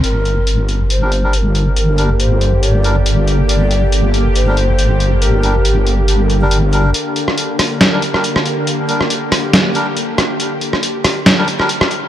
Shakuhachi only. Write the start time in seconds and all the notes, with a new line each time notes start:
0.04 A#4
0.90 C5
1.33 C5
1.38 A#4
1.77 A#4
2.20 C5
2.63 D5
3.49 D5
4.35 C5
5.22 A#4